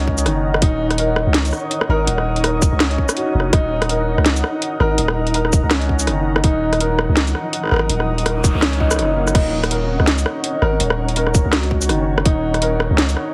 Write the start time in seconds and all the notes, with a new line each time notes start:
Already playing: C#2 C#4 D#4 A#4 D#5 F#5 A#5
0.07 kick
0.18 shaker
0.26 F#1 D#3, cross-stick, closed hi-hat
0.54 cross-stick
0.62 D#1 D#4 C#5, kick, closed hi-hat
0.77 D#6
0.91 cross-stick, closed hi-hat
0.98 A#4, closed hi-hat
1.16 cross-stick
1.27 C#2
1.34 snare, closed hi-hat
1.45 closed hi-hat, shaker
1.47 shaker
1.50 cross-stick, shaker
1.53 shaker
1.56 shaker
1.71 closed hi-hat
1.81 cross-stick
1.89 G#1 A#4
2.07 D#1, closed hi-hat
2.18 cross-stick
2.36 closed hi-hat
2.44 A#4, cross-stick, closed hi-hat
2.62 kick, shaker
2.72 C#2
2.80 C#4, cross-stick, snare, closed hi-hat
2.91 closed hi-hat
2.98 kick
3.09 cross-stick, shaker
3.17 F#4, closed hi-hat
3.35 F1
3.40 cross-stick
3.53 D#1 D#4 D#5, kick, cross-stick, closed hi-hat
3.67 A#5
3.82 cross-stick, closed hi-hat
3.89 A#4, closed hi-hat
4.18 C#2, cross-stick
4.26 snare, closed hi-hat
4.36 closed hi-hat, shaker
4.44 cross-stick
4.62 closed hi-hat
4.80 G#1 A#4, cross-stick
4.98 D#1, closed hi-hat
5.08 cross-stick
5.27 closed hi-hat
5.34 A#4, closed hi-hat
5.45 cross-stick
5.53 kick, shaker
5.64 C#2
5.71 C#4, cross-stick, snare, closed hi-hat
5.81 closed hi-hat
5.89 kick
5.99 shaker
6.07 F#1 D#3, cross-stick, closed hi-hat
6.36 cross-stick
6.44 D#1 F3 D#4, kick, closed hi-hat
6.58 D#6
6.73 cross-stick, closed hi-hat
6.80 A#4, closed hi-hat
6.99 cross-stick
7.09 C#2
7.17 snare, closed hi-hat
7.27 closed hi-hat, shaker
7.35 cross-stick
7.53 closed hi-hat
7.64 cross-stick
7.65 cross-stick
7.67 cross-stick
7.69 cross-stick
7.71 G#1 A#4, cross-stick
7.74 cross-stick
7.76 cross-stick
7.79 cross-stick
7.89 D#1, closed hi-hat, noise sweep
8.00 cross-stick
8.18 closed hi-hat
8.26 A#4, cross-stick, closed hi-hat
8.44 kick, closed hi-hat, shaker
8.55 C#2
8.62 C#4, cross-stick, snare, closed hi-hat
8.73 closed hi-hat
8.80 D#4, kick
8.91 cross-stick, shaker
8.93 cross-stick
8.96 F#1 D#4, cross-stick
8.99 cross-stick, closed hi-hat
9.02 cross-stick
9.05 cross-stick
9.16 A#3
9.27 cross-stick, shaker
9.35 D#1 C#4 D#4 C#5, kick, cross-stick, closed hi-hat, crash
9.49 A#5
9.64 cross-stick, closed hi-hat
9.71 A#4, closed hi-hat
10.00 C#2, cross-stick
10.07 snare, closed hi-hat
10.18 closed hi-hat, shaker
10.26 cross-stick
10.44 closed hi-hat
10.62 G#1 A#4, cross-stick
10.80 D#1, closed hi-hat
10.90 cross-stick
11.08 closed hi-hat
11.16 A#4, closed hi-hat
11.27 cross-stick
11.35 kick, shaker
11.45 C#2
11.53 F#4, cross-stick, snare, closed hi-hat
11.63 closed hi-hat
11.71 kick
11.82 shaker
11.89 F#1 D#3, cross-stick, closed hi-hat
12.18 cross-stick
12.25 D#1 D#4, kick, closed hi-hat
12.40 D#6
12.54 cross-stick, closed hi-hat
12.62 A#4, closed hi-hat
12.80 cross-stick
12.91 C#2
12.98 snare, closed hi-hat
13.09 closed hi-hat, shaker
13.17 cross-stick